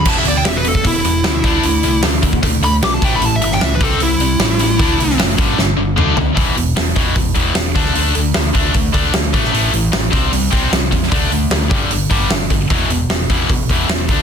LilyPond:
<<
  \new Staff \with { instrumentName = "Lead electric guitar" } { \time 4/4 \key e \minor \tempo 4 = 152 a''16 e''16 d''16 g''16 e''16 b'16 a'8 e'2~ | e'4 r4. b''16 r16 d'''16 a''16 g''16 b''16 | a''16 e''16 e''16 g''16 e''16 b'16 a'8 e'2~ | e'4 r2. |
r1 | r1 | r1 | r1 |
r1 | }
  \new Staff \with { instrumentName = "Distorted electric guitar" } { \clef bass \time 4/4 \key e \minor <e, b, e>8 <e, b,>8 <e, b,>8 <e, b,>8 <e, b,>8 <e, b,>8 <e, b,>8 <d a d'>8 | <d a>8 <d a>8 <d a>8 <d a>8 <d a>8 <d a>8 <d a>8 <a, e a>8 | <a, e>8 <a, e>8 <a, e>8 <c g c'>8 <c g>8 <c g>8 <c g>8 <c g>8 | <d a d'>8 <d a>8 <d a>8 <g, d g>8 <g, d>8 <g, d>8 <d a d'>8 <d a>8 |
<e, b, e>8 <e, b,>8 <e, b,>8 <e, b, e>8 <e, b,>8 <e, b, e>8 <e, b,>8 <d a d'>8 | <d a d'>8 <d a>8 <d a>8 <d a d'>8 <d a>8 <d a d'>8 <d a>8 <a, e a>8 | <a, e a>8 <a, e>8 <a, e>8 <c g c'>8 <c g>8 <c g c'>8 <c g>8 <c g>8 | <d a d'>8 <d a>8 <d a>8 <g, d g>8 <g, d>8 <g, d g>8 <g, d>8 <g, d>8 |
<e, b, e>8 <e, b,>8 <e, b,>8 <e, b, e>8 <e, b,>8 <e, b, e>8 <e, b,>8 <d a d'>8 | }
  \new Staff \with { instrumentName = "Fingered electric bass" } { \clef bass \time 4/4 \key e \minor e,,8 d,8 e,,4 e,,8 e,,8 d,8 d,8 | d,8 c,8 d,4 d,8 d,8 b,,8 a,,8 | a,,8 g,,8 cis,8 c,8 c,8 c,8 a,,4 | d,8 c,8 fis,,8 g,,8 g,,8 g,,8 d,4 |
e,,8 e,,8 e,,8 e,,8 e,,8 e,,8 e,,8 d,8 | d,8 d,8 d,8 d,8 d,8 d,8 d,8 a,,8 | a,,8 a,,8 a,,8 c,8 c,8 c,8 c,8 e,8 | d,8 d,8 d,8 g,,8 g,,8 g,,8 g,,8 g,,8 |
e,,8 e,,8 e,,8 e,,8 e,,8 e,,8 e,,8 d,8 | }
  \new DrumStaff \with { instrumentName = "Drums" } \drummode { \time 4/4 <cymc bd>8 hho8 <hho sn>8 hho16 bd16 <hho bd>8 hho8 <hho sn>8 <hho bd>8 | hho8 hho8 <hho sn>8 <hho bd>16 bd16 <hho bd>8 hho8 <hho sn>8 <hho bd>8 | hho8 hho16 sn16 <hho sn>8 <hho bd>8 hho8 hho8 <hho sn>8 hho8 | <hho bd>8 hho16 sn16 <hho sn>8 <hho bd>8 sn4 toml8 tomfh8 |
<hho bd>8 hho8 <hho sn>8 <hho bd>8 <hho bd>8 <hho bd>8 <hho sn>8 <hho bd>16 sn16 | hho8 hho8 <hho sn>8 <hho bd>8 <hho bd>8 <hho bd>8 <hho sn>8 <hho bd>16 sn16 | hho8 hho8 <hho sn>8 <hho bd>8 hho8 <hho bd>8 <hho sn>8 <hho bd>16 sn16 | <hho bd>8 hho8 <hho sn>8 <hho bd>8 hho8 <hho bd>8 <hho sn>8 <hho bd>8 |
<hho bd>8 hho8 <hho sn>8 <hho bd>8 <hho bd>8 <hho bd>8 <hho sn>8 <hho bd>8 | }
>>